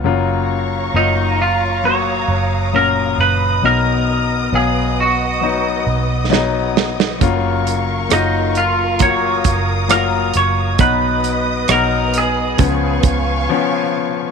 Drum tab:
HH |----------------|----------------|x-x-x-x-x-x-x-x-|x-x-x-x-x-x-----|
SD |----------------|------------o-oo|----r-------r---|----r-----------|
BD |----------------|----------------|o-------o-o-----|o-------o-o-----|